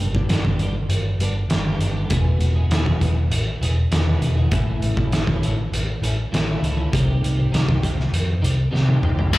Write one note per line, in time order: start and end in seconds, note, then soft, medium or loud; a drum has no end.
0.00 0.21 G1 medium
0.00 0.28 G2 medium
0.00 0.29 D3 medium
0.00 0.17 G3 medium
0.00 0.17 B3 medium
0.00 0.15 D4 medium
0.00 0.14 G4 loud
0.15 0.29 G3 medium
0.15 0.31 B3 medium
0.15 0.30 D4 medium
0.15 0.31 G4 medium
0.15 kick medium
0.27 0.50 G1 medium
0.27 0.75 G2 medium
0.27 0.76 D3 loud
0.27 0.47 G3 medium
0.27 0.47 B3 medium
0.27 snare loud
0.27 closed hi-hat medium
0.32 0.45 D4 loud
0.32 0.44 G4 medium
0.45 0.59 G3 soft
0.45 0.61 B3 medium
0.45 0.61 D4 medium
0.45 0.62 G4 medium
0.45 kick medium
0.59 0.81 G1 medium
0.59 0.76 G3 medium
0.59 0.76 B3 medium
0.59 0.75 D4 medium
0.59 0.75 G4 medium
0.59 closed hi-hat medium
0.76 muted clean electric guitar stroke soft
0.89 1.11 G1 medium
0.89 closed hi-hat medium
1.19 1.42 G1 medium
1.19 1.37 G3 medium
1.19 1.36 B3 medium
1.19 1.36 D4 medium
1.19 1.36 G4 medium
1.19 closed hi-hat medium
1.37 muted clean electric guitar stroke soft
1.49 1.71 G1 medium
1.49 2.10 G2 medium
1.49 2.10 D3 medium
1.49 1.79 G3 medium
1.49 snare loud
1.49 closed hi-hat medium
1.53 1.81 B3 medium
1.53 1.81 D4 medium
1.53 1.82 G4 loud
1.79 2.02 G1 medium
1.79 1.98 G3 medium
1.79 1.97 B3 medium
1.79 1.96 D4 medium
1.79 closed hi-hat medium
1.84 1.95 G4 medium
1.96 2.11 G3 soft
1.96 2.10 B3 medium
1.96 2.10 D4 medium
1.96 2.09 G4 medium
2.10 2.32 E1 medium
2.10 2.70 E2 medium
2.10 2.71 B2 medium
2.10 2.58 E3 medium
2.10 2.56 G#3 medium
2.10 2.56 B3 loud
2.10 2.54 G#4 loud
2.10 kick loud
2.10 closed hi-hat medium
2.39 2.62 E1 medium
2.39 closed hi-hat medium
2.56 2.72 E3 medium
2.56 2.72 G#3 medium
2.56 2.73 B3 medium
2.56 2.73 G#4 medium
2.70 2.92 E1 medium
2.70 3.17 E2 medium
2.70 3.17 B2 medium
2.70 2.89 E3 loud
2.70 2.87 G#3 loud
2.70 snare loud
2.70 closed hi-hat medium
2.74 2.86 B3 loud
2.74 2.85 G#4 loud
2.86 3.01 E3 medium
2.86 3.01 G#3 medium
2.86 3.02 B3 medium
2.86 3.03 G#4 medium
2.86 kick medium
3.01 3.23 E1 medium
3.01 3.17 E3 medium
3.01 3.17 G#3 medium
3.01 3.16 B3 medium
3.01 3.16 G#4 medium
3.01 kick medium
3.01 closed hi-hat medium
3.17 muted clean electric guitar stroke soft
3.30 3.53 A1 medium
3.30 closed hi-hat medium
3.61 3.83 E1 medium
3.61 3.77 E3 medium
3.61 3.77 G#3 medium
3.61 3.77 B3 medium
3.61 3.77 G#4 medium
3.61 closed hi-hat medium
3.78 muted clean electric guitar stroke medium
3.91 4.13 E2 medium
3.91 4.50 E2 medium
3.91 4.51 B2 medium
3.91 4.21 E3 medium
3.91 4.22 G#3 loud
3.91 4.23 B3 medium
3.91 4.24 G#4 loud
3.91 snare loud
3.91 closed hi-hat medium
4.22 4.44 E1 medium
4.22 4.38 E3 medium
4.22 4.37 G#3 medium
4.22 4.36 B3 medium
4.22 4.36 G#4 medium
4.22 closed hi-hat medium
4.37 4.52 E3 medium
4.37 4.51 G#3 medium
4.37 4.51 B3 medium
4.37 4.50 G#4 medium
4.51 4.74 A1 medium
4.51 5.10 A2 medium
4.51 5.11 E3 medium
4.51 4.99 A3 medium
4.51 4.98 C#4 medium
4.51 4.96 E4 medium
4.51 kick loud
4.51 closed hi-hat medium
4.80 5.03 A1 medium
4.80 closed hi-hat medium
4.97 5.12 A3 medium
4.97 5.13 C#4 medium
4.97 5.14 E4 medium
4.97 kick medium
5.12 5.34 A1 medium
5.12 5.57 A2 medium
5.12 5.41 E3 medium
5.12 5.29 A3 medium
5.12 5.28 C#4 loud
5.12 5.26 E4 medium
5.12 snare loud
5.12 closed hi-hat medium
5.27 5.43 A3 medium
5.27 5.43 C#4 medium
5.27 5.44 E4 medium
5.27 kick medium
5.42 5.64 A1 medium
5.42 5.58 E3 medium
5.42 5.57 A3 medium
5.42 5.57 C#4 medium
5.42 5.57 E4 medium
5.42 closed hi-hat medium
5.58 muted clean electric guitar stroke soft
5.72 5.94 A1 medium
5.72 closed hi-hat medium
6.02 6.24 A1 medium
6.02 6.17 E3 medium
6.02 6.17 A3 medium
6.02 6.17 C#4 medium
6.02 6.17 E4 medium
6.02 closed hi-hat medium
6.18 muted clean electric guitar stroke soft
6.32 6.55 A1 medium
6.32 6.91 A2 medium
6.32 6.60 E3 medium
6.32 6.62 A3 medium
6.32 6.63 C#4 medium
6.32 6.63 E4 medium
6.32 snare loud
6.32 closed hi-hat medium
6.62 6.84 C#2 medium
6.62 6.91 E3 medium
6.62 6.79 A3 medium
6.62 6.77 C#4 medium
6.62 6.75 E4 medium
6.62 closed hi-hat medium
6.77 6.92 A3 soft
6.77 6.91 C#4 medium
6.77 6.91 E4 medium
6.91 7.15 C2 medium
6.91 7.50 C3 medium
6.91 7.51 D#3 medium
6.91 7.38 G3 medium
6.91 7.37 C4 medium
6.91 7.36 G4 medium
6.91 kick loud
6.91 closed hi-hat medium
7.23 7.45 C2 medium
7.23 closed hi-hat medium
7.37 7.52 G3 medium
7.37 7.52 C4 medium
7.37 7.53 G4 medium
7.51 7.75 C2 medium
7.51 7.98 C3 medium
7.51 7.81 D#3 medium
7.51 7.69 G3 medium
7.51 7.67 C4 medium
7.51 7.65 G4 loud
7.51 snare loud
7.51 closed hi-hat medium
7.67 7.81 G3 medium
7.67 7.82 C4 medium
7.67 7.83 G4 medium
7.67 kick medium
7.82 8.05 C2 medium
7.82 7.97 D#3 medium
7.82 7.97 G3 medium
7.82 7.97 C4 medium
7.82 7.96 G4 medium
7.82 kick medium
7.82 closed hi-hat medium
7.97 muted clean electric guitar stroke soft
7.97 snare soft
8.12 8.35 F2 medium
8.12 closed hi-hat medium
8.42 8.65 C2 medium
8.42 8.57 D#3 medium
8.42 8.57 G3 medium
8.42 8.57 C4 medium
8.42 8.56 G4 medium
8.42 closed hi-hat medium
8.58 muted clean electric guitar stroke soft
8.71 9.31 C3 medium
8.71 8.95 C3 medium
8.71 9.00 D#3 loud
8.71 9.02 G3 medium
8.71 9.03 C4 medium
8.71 9.04 G4 loud
8.75 snare medium
8.89 high tom medium
9.02 9.25 F1 medium
9.02 9.31 D#3 medium
9.02 9.18 G3 medium
9.02 9.17 C4 medium
9.02 9.16 G4 medium
9.02 mid tom medium
9.17 9.32 G3 medium
9.17 9.32 C4 medium
9.17 9.31 G4 medium
9.17 floor tom medium
9.32 9.38 G1 medium
9.32 9.38 G2 medium
9.32 9.38 D3 medium
9.32 9.38 G3 medium
9.32 kick loud
9.32 crash loud